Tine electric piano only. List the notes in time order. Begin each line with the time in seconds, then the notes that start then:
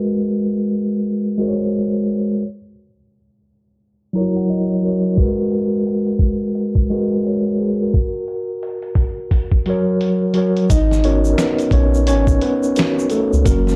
Already playing: G#3 F#4 A#4 B4
1.38 G#3 F#4 A#4
1.42 C5
1.48 C#5
4.13 F#3 E4 A#4 A#5
4.17 F#4 C#5
4.36 F#5
4.50 D#5
4.70 C#5
4.82 F#3 F#4 A#4
4.86 C#5
5.16 G#3 F#4 A#4 B4
6.90 G#3 F#4 A#4 B4
7.26 A#4 C#5
7.60 G#4 B4
7.82 F#4 A#4
9.66 F#3 F#4 A#4 C#5
10.34 F#3 F#4 A#4
10.38 C#5
10.70 D#4 D#5
11.05 B3 C#4 F#4 A#4 C#5
11.33 A#4
11.39 B3 B4
11.73 C#4 C#5
12.08 C#4 C#5
12.42 B3 B4
12.77 B3 F#4 A#4
13.11 A3 A4
13.45 F#3 A#3 C#4 F#4 A#4